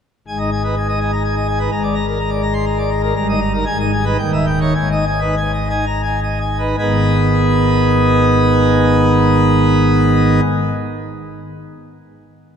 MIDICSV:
0, 0, Header, 1, 2, 480
1, 0, Start_track
1, 0, Key_signature, 5, "minor"
1, 0, Tempo, 484653
1, 272, Time_signature, 3, 2, 24, 8
1, 3630, Tempo, 545951
1, 4590, Tempo, 617284
1, 5070, Tempo, 669643
1, 5550, Tempo, 744417
1, 6030, Tempo, 779221
1, 9590, End_track
2, 0, Start_track
2, 0, Title_t, "Pipe organ"
2, 0, Program_c, 0, 19
2, 272, Note_on_c, 0, 32, 75
2, 274, Note_on_c, 0, 80, 69
2, 275, Note_on_c, 0, 44, 74
2, 380, Note_on_c, 0, 75, 64
2, 381, Note_off_c, 0, 80, 0
2, 386, Note_on_c, 0, 63, 57
2, 493, Note_off_c, 0, 75, 0
2, 496, Note_off_c, 0, 63, 0
2, 512, Note_on_c, 0, 80, 62
2, 620, Note_off_c, 0, 80, 0
2, 637, Note_on_c, 0, 63, 56
2, 637, Note_on_c, 0, 71, 57
2, 742, Note_off_c, 0, 63, 0
2, 742, Note_off_c, 0, 71, 0
2, 762, Note_on_c, 0, 80, 66
2, 865, Note_off_c, 0, 80, 0
2, 875, Note_on_c, 0, 75, 64
2, 980, Note_off_c, 0, 75, 0
2, 994, Note_on_c, 0, 80, 64
2, 996, Note_on_c, 0, 63, 58
2, 1099, Note_off_c, 0, 80, 0
2, 1101, Note_off_c, 0, 63, 0
2, 1115, Note_on_c, 0, 82, 71
2, 1215, Note_off_c, 0, 82, 0
2, 1230, Note_on_c, 0, 80, 66
2, 1336, Note_off_c, 0, 80, 0
2, 1344, Note_on_c, 0, 75, 62
2, 1452, Note_off_c, 0, 75, 0
2, 1463, Note_on_c, 0, 80, 64
2, 1571, Note_off_c, 0, 80, 0
2, 1579, Note_on_c, 0, 71, 66
2, 1584, Note_on_c, 0, 63, 62
2, 1667, Note_off_c, 0, 32, 0
2, 1668, Note_off_c, 0, 44, 0
2, 1684, Note_off_c, 0, 71, 0
2, 1686, Note_off_c, 0, 63, 0
2, 1697, Note_on_c, 0, 32, 85
2, 1700, Note_on_c, 0, 82, 76
2, 1704, Note_on_c, 0, 44, 83
2, 1809, Note_off_c, 0, 82, 0
2, 1813, Note_on_c, 0, 74, 65
2, 1924, Note_off_c, 0, 74, 0
2, 1929, Note_on_c, 0, 82, 68
2, 2041, Note_off_c, 0, 82, 0
2, 2052, Note_on_c, 0, 70, 66
2, 2162, Note_off_c, 0, 70, 0
2, 2170, Note_on_c, 0, 82, 69
2, 2276, Note_on_c, 0, 74, 71
2, 2280, Note_off_c, 0, 82, 0
2, 2391, Note_off_c, 0, 74, 0
2, 2401, Note_on_c, 0, 82, 70
2, 2513, Note_on_c, 0, 84, 86
2, 2514, Note_off_c, 0, 82, 0
2, 2624, Note_off_c, 0, 84, 0
2, 2639, Note_on_c, 0, 82, 77
2, 2752, Note_off_c, 0, 82, 0
2, 2756, Note_on_c, 0, 74, 72
2, 2870, Note_off_c, 0, 74, 0
2, 2872, Note_on_c, 0, 82, 68
2, 2988, Note_off_c, 0, 82, 0
2, 3001, Note_on_c, 0, 70, 76
2, 3090, Note_off_c, 0, 32, 0
2, 3094, Note_off_c, 0, 44, 0
2, 3109, Note_off_c, 0, 70, 0
2, 3129, Note_on_c, 0, 82, 110
2, 3131, Note_on_c, 0, 43, 91
2, 3134, Note_on_c, 0, 31, 92
2, 3240, Note_off_c, 0, 82, 0
2, 3253, Note_on_c, 0, 63, 67
2, 3256, Note_on_c, 0, 75, 74
2, 3364, Note_off_c, 0, 63, 0
2, 3366, Note_off_c, 0, 75, 0
2, 3373, Note_on_c, 0, 82, 75
2, 3487, Note_off_c, 0, 82, 0
2, 3498, Note_on_c, 0, 63, 70
2, 3500, Note_on_c, 0, 70, 67
2, 3608, Note_off_c, 0, 63, 0
2, 3609, Note_off_c, 0, 70, 0
2, 3613, Note_off_c, 0, 43, 0
2, 3614, Note_off_c, 0, 31, 0
2, 3621, Note_on_c, 0, 32, 91
2, 3622, Note_on_c, 0, 44, 85
2, 3623, Note_on_c, 0, 80, 95
2, 3727, Note_off_c, 0, 80, 0
2, 3745, Note_on_c, 0, 63, 75
2, 3745, Note_on_c, 0, 75, 77
2, 3846, Note_off_c, 0, 63, 0
2, 3846, Note_off_c, 0, 75, 0
2, 3861, Note_on_c, 0, 80, 78
2, 3963, Note_off_c, 0, 80, 0
2, 3971, Note_on_c, 0, 71, 74
2, 3973, Note_on_c, 0, 63, 69
2, 4073, Note_off_c, 0, 71, 0
2, 4074, Note_off_c, 0, 63, 0
2, 4075, Note_off_c, 0, 32, 0
2, 4075, Note_off_c, 0, 44, 0
2, 4083, Note_on_c, 0, 39, 90
2, 4085, Note_on_c, 0, 79, 94
2, 4086, Note_on_c, 0, 27, 86
2, 4196, Note_off_c, 0, 79, 0
2, 4214, Note_on_c, 0, 63, 64
2, 4215, Note_on_c, 0, 76, 66
2, 4323, Note_off_c, 0, 63, 0
2, 4324, Note_off_c, 0, 76, 0
2, 4331, Note_on_c, 0, 79, 63
2, 4445, Note_off_c, 0, 79, 0
2, 4459, Note_on_c, 0, 63, 65
2, 4459, Note_on_c, 0, 73, 65
2, 4570, Note_off_c, 0, 39, 0
2, 4570, Note_off_c, 0, 63, 0
2, 4570, Note_off_c, 0, 73, 0
2, 4572, Note_off_c, 0, 27, 0
2, 4580, Note_on_c, 0, 80, 75
2, 4584, Note_on_c, 0, 44, 80
2, 4585, Note_on_c, 0, 32, 78
2, 4689, Note_off_c, 0, 80, 0
2, 4710, Note_on_c, 0, 63, 57
2, 4712, Note_on_c, 0, 75, 63
2, 4814, Note_off_c, 0, 63, 0
2, 4815, Note_off_c, 0, 75, 0
2, 4829, Note_on_c, 0, 80, 66
2, 4934, Note_on_c, 0, 63, 61
2, 4935, Note_off_c, 0, 80, 0
2, 4937, Note_on_c, 0, 71, 59
2, 5050, Note_off_c, 0, 63, 0
2, 5051, Note_off_c, 0, 71, 0
2, 5066, Note_on_c, 0, 80, 65
2, 5172, Note_off_c, 0, 80, 0
2, 5181, Note_on_c, 0, 75, 65
2, 5289, Note_off_c, 0, 75, 0
2, 5300, Note_on_c, 0, 63, 61
2, 5301, Note_on_c, 0, 80, 68
2, 5410, Note_off_c, 0, 63, 0
2, 5411, Note_off_c, 0, 80, 0
2, 5422, Note_on_c, 0, 82, 72
2, 5529, Note_off_c, 0, 82, 0
2, 5543, Note_on_c, 0, 80, 68
2, 5649, Note_off_c, 0, 80, 0
2, 5668, Note_on_c, 0, 75, 57
2, 5772, Note_off_c, 0, 75, 0
2, 5783, Note_on_c, 0, 80, 59
2, 5892, Note_off_c, 0, 80, 0
2, 5901, Note_on_c, 0, 63, 58
2, 5902, Note_on_c, 0, 71, 62
2, 6002, Note_off_c, 0, 32, 0
2, 6002, Note_off_c, 0, 44, 0
2, 6009, Note_off_c, 0, 63, 0
2, 6009, Note_off_c, 0, 71, 0
2, 6026, Note_on_c, 0, 32, 72
2, 6027, Note_on_c, 0, 44, 71
2, 6027, Note_on_c, 0, 59, 60
2, 6027, Note_on_c, 0, 63, 59
2, 6029, Note_on_c, 0, 51, 59
2, 6031, Note_on_c, 0, 68, 59
2, 6031, Note_on_c, 0, 71, 60
2, 8253, Note_off_c, 0, 32, 0
2, 8255, Note_off_c, 0, 44, 0
2, 8255, Note_off_c, 0, 59, 0
2, 8255, Note_off_c, 0, 63, 0
2, 8256, Note_off_c, 0, 51, 0
2, 8258, Note_off_c, 0, 71, 0
2, 8259, Note_off_c, 0, 68, 0
2, 9590, End_track
0, 0, End_of_file